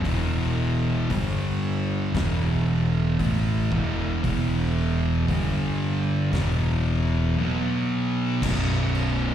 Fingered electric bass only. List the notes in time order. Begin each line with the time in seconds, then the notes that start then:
0.05 E1
1.10 G1
2.14 E1
3.19 A1
3.72 E1
4.24 E1
5.29 G1
6.33 E1
8.42 B0